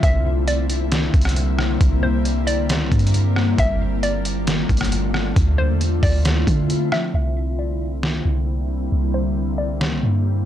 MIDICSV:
0, 0, Header, 1, 5, 480
1, 0, Start_track
1, 0, Tempo, 444444
1, 32, Time_signature, 4, 2, 24, 8
1, 11289, End_track
2, 0, Start_track
2, 0, Title_t, "Synth pluck"
2, 0, Program_c, 0, 84
2, 40, Note_on_c, 0, 76, 108
2, 488, Note_off_c, 0, 76, 0
2, 514, Note_on_c, 0, 74, 87
2, 1910, Note_off_c, 0, 74, 0
2, 2191, Note_on_c, 0, 72, 78
2, 2643, Note_off_c, 0, 72, 0
2, 2666, Note_on_c, 0, 74, 91
2, 3826, Note_off_c, 0, 74, 0
2, 3882, Note_on_c, 0, 76, 96
2, 4329, Note_off_c, 0, 76, 0
2, 4353, Note_on_c, 0, 74, 86
2, 5749, Note_off_c, 0, 74, 0
2, 6029, Note_on_c, 0, 72, 88
2, 6482, Note_off_c, 0, 72, 0
2, 6511, Note_on_c, 0, 74, 79
2, 7429, Note_off_c, 0, 74, 0
2, 7477, Note_on_c, 0, 76, 82
2, 7703, Note_off_c, 0, 76, 0
2, 7721, Note_on_c, 0, 76, 108
2, 8168, Note_off_c, 0, 76, 0
2, 8194, Note_on_c, 0, 74, 81
2, 9590, Note_off_c, 0, 74, 0
2, 9873, Note_on_c, 0, 72, 78
2, 10324, Note_off_c, 0, 72, 0
2, 10347, Note_on_c, 0, 74, 83
2, 11289, Note_off_c, 0, 74, 0
2, 11289, End_track
3, 0, Start_track
3, 0, Title_t, "Ambient pad"
3, 0, Program_c, 1, 92
3, 0, Note_on_c, 1, 50, 80
3, 0, Note_on_c, 1, 64, 91
3, 33, Note_on_c, 1, 55, 78
3, 33, Note_on_c, 1, 58, 77
3, 33, Note_on_c, 1, 60, 76
3, 3830, Note_off_c, 1, 50, 0
3, 3830, Note_off_c, 1, 64, 0
3, 3835, Note_off_c, 1, 60, 0
3, 3870, Note_on_c, 1, 50, 84
3, 3871, Note_on_c, 1, 57, 80
3, 3871, Note_on_c, 1, 65, 91
3, 5749, Note_off_c, 1, 55, 0
3, 5749, Note_off_c, 1, 58, 0
3, 5772, Note_off_c, 1, 65, 0
3, 5790, Note_on_c, 1, 64, 95
3, 5790, Note_on_c, 1, 65, 77
3, 5791, Note_on_c, 1, 60, 76
3, 7673, Note_off_c, 1, 50, 0
3, 7673, Note_off_c, 1, 57, 0
3, 7692, Note_off_c, 1, 60, 0
3, 7692, Note_off_c, 1, 64, 0
3, 7692, Note_off_c, 1, 65, 0
3, 7713, Note_on_c, 1, 55, 74
3, 7713, Note_on_c, 1, 58, 74
3, 7713, Note_on_c, 1, 60, 72
3, 7713, Note_on_c, 1, 64, 88
3, 7714, Note_on_c, 1, 50, 80
3, 11289, Note_off_c, 1, 50, 0
3, 11289, Note_off_c, 1, 55, 0
3, 11289, Note_off_c, 1, 58, 0
3, 11289, Note_off_c, 1, 60, 0
3, 11289, Note_off_c, 1, 64, 0
3, 11289, End_track
4, 0, Start_track
4, 0, Title_t, "808-style bass"
4, 0, Program_c, 2, 38
4, 33, Note_on_c, 2, 36, 117
4, 1190, Note_off_c, 2, 36, 0
4, 1229, Note_on_c, 2, 36, 102
4, 1922, Note_off_c, 2, 36, 0
4, 1952, Note_on_c, 2, 36, 111
4, 2912, Note_on_c, 2, 38, 103
4, 2929, Note_off_c, 2, 36, 0
4, 3034, Note_on_c, 2, 36, 100
4, 3050, Note_off_c, 2, 38, 0
4, 3143, Note_off_c, 2, 36, 0
4, 3150, Note_on_c, 2, 43, 102
4, 3842, Note_off_c, 2, 43, 0
4, 3871, Note_on_c, 2, 31, 114
4, 5029, Note_off_c, 2, 31, 0
4, 5069, Note_on_c, 2, 31, 103
4, 5762, Note_off_c, 2, 31, 0
4, 5792, Note_on_c, 2, 38, 110
4, 6152, Note_on_c, 2, 40, 100
4, 6168, Note_off_c, 2, 38, 0
4, 6494, Note_off_c, 2, 40, 0
4, 6510, Note_on_c, 2, 38, 104
4, 6972, Note_off_c, 2, 38, 0
4, 6989, Note_on_c, 2, 50, 109
4, 7472, Note_on_c, 2, 53, 106
4, 7488, Note_off_c, 2, 50, 0
4, 7700, Note_off_c, 2, 53, 0
4, 7712, Note_on_c, 2, 36, 107
4, 8869, Note_off_c, 2, 36, 0
4, 8912, Note_on_c, 2, 36, 100
4, 9603, Note_off_c, 2, 36, 0
4, 9633, Note_on_c, 2, 36, 108
4, 10593, Note_on_c, 2, 38, 92
4, 10609, Note_off_c, 2, 36, 0
4, 10712, Note_on_c, 2, 36, 95
4, 10729, Note_off_c, 2, 38, 0
4, 10826, Note_off_c, 2, 36, 0
4, 10832, Note_on_c, 2, 43, 100
4, 11289, Note_off_c, 2, 43, 0
4, 11289, End_track
5, 0, Start_track
5, 0, Title_t, "Drums"
5, 33, Note_on_c, 9, 36, 124
5, 33, Note_on_c, 9, 42, 87
5, 141, Note_off_c, 9, 36, 0
5, 141, Note_off_c, 9, 42, 0
5, 514, Note_on_c, 9, 42, 81
5, 622, Note_off_c, 9, 42, 0
5, 751, Note_on_c, 9, 42, 88
5, 859, Note_off_c, 9, 42, 0
5, 990, Note_on_c, 9, 42, 87
5, 994, Note_on_c, 9, 38, 122
5, 1098, Note_off_c, 9, 42, 0
5, 1102, Note_off_c, 9, 38, 0
5, 1229, Note_on_c, 9, 36, 100
5, 1232, Note_on_c, 9, 42, 44
5, 1312, Note_off_c, 9, 42, 0
5, 1312, Note_on_c, 9, 42, 59
5, 1337, Note_off_c, 9, 36, 0
5, 1353, Note_on_c, 9, 37, 97
5, 1392, Note_off_c, 9, 42, 0
5, 1392, Note_on_c, 9, 42, 73
5, 1461, Note_off_c, 9, 37, 0
5, 1473, Note_off_c, 9, 42, 0
5, 1473, Note_on_c, 9, 42, 88
5, 1581, Note_off_c, 9, 42, 0
5, 1713, Note_on_c, 9, 37, 102
5, 1821, Note_off_c, 9, 37, 0
5, 1952, Note_on_c, 9, 36, 127
5, 1952, Note_on_c, 9, 42, 89
5, 2060, Note_off_c, 9, 36, 0
5, 2060, Note_off_c, 9, 42, 0
5, 2433, Note_on_c, 9, 42, 82
5, 2541, Note_off_c, 9, 42, 0
5, 2672, Note_on_c, 9, 42, 90
5, 2780, Note_off_c, 9, 42, 0
5, 2910, Note_on_c, 9, 42, 87
5, 2915, Note_on_c, 9, 38, 127
5, 3018, Note_off_c, 9, 42, 0
5, 3023, Note_off_c, 9, 38, 0
5, 3150, Note_on_c, 9, 36, 103
5, 3153, Note_on_c, 9, 42, 43
5, 3232, Note_off_c, 9, 42, 0
5, 3232, Note_on_c, 9, 42, 57
5, 3258, Note_off_c, 9, 36, 0
5, 3312, Note_off_c, 9, 42, 0
5, 3312, Note_on_c, 9, 42, 71
5, 3393, Note_off_c, 9, 42, 0
5, 3393, Note_on_c, 9, 42, 90
5, 3501, Note_off_c, 9, 42, 0
5, 3633, Note_on_c, 9, 37, 104
5, 3741, Note_off_c, 9, 37, 0
5, 3871, Note_on_c, 9, 42, 85
5, 3872, Note_on_c, 9, 36, 127
5, 3979, Note_off_c, 9, 42, 0
5, 3980, Note_off_c, 9, 36, 0
5, 4353, Note_on_c, 9, 42, 79
5, 4461, Note_off_c, 9, 42, 0
5, 4592, Note_on_c, 9, 42, 89
5, 4700, Note_off_c, 9, 42, 0
5, 4830, Note_on_c, 9, 42, 83
5, 4834, Note_on_c, 9, 38, 127
5, 4938, Note_off_c, 9, 42, 0
5, 4942, Note_off_c, 9, 38, 0
5, 5069, Note_on_c, 9, 36, 97
5, 5073, Note_on_c, 9, 42, 43
5, 5152, Note_off_c, 9, 42, 0
5, 5152, Note_on_c, 9, 42, 60
5, 5177, Note_off_c, 9, 36, 0
5, 5193, Note_on_c, 9, 37, 100
5, 5232, Note_off_c, 9, 42, 0
5, 5232, Note_on_c, 9, 42, 69
5, 5301, Note_off_c, 9, 37, 0
5, 5313, Note_off_c, 9, 42, 0
5, 5313, Note_on_c, 9, 42, 90
5, 5421, Note_off_c, 9, 42, 0
5, 5553, Note_on_c, 9, 37, 104
5, 5661, Note_off_c, 9, 37, 0
5, 5792, Note_on_c, 9, 36, 127
5, 5793, Note_on_c, 9, 42, 83
5, 5900, Note_off_c, 9, 36, 0
5, 5901, Note_off_c, 9, 42, 0
5, 6274, Note_on_c, 9, 42, 80
5, 6382, Note_off_c, 9, 42, 0
5, 6510, Note_on_c, 9, 36, 84
5, 6512, Note_on_c, 9, 46, 69
5, 6618, Note_off_c, 9, 36, 0
5, 6620, Note_off_c, 9, 46, 0
5, 6750, Note_on_c, 9, 42, 87
5, 6755, Note_on_c, 9, 38, 127
5, 6858, Note_off_c, 9, 42, 0
5, 6863, Note_off_c, 9, 38, 0
5, 6990, Note_on_c, 9, 36, 100
5, 6994, Note_on_c, 9, 42, 67
5, 7098, Note_off_c, 9, 36, 0
5, 7102, Note_off_c, 9, 42, 0
5, 7234, Note_on_c, 9, 42, 90
5, 7342, Note_off_c, 9, 42, 0
5, 7474, Note_on_c, 9, 37, 105
5, 7582, Note_off_c, 9, 37, 0
5, 8675, Note_on_c, 9, 38, 120
5, 8783, Note_off_c, 9, 38, 0
5, 10595, Note_on_c, 9, 38, 117
5, 10703, Note_off_c, 9, 38, 0
5, 11289, End_track
0, 0, End_of_file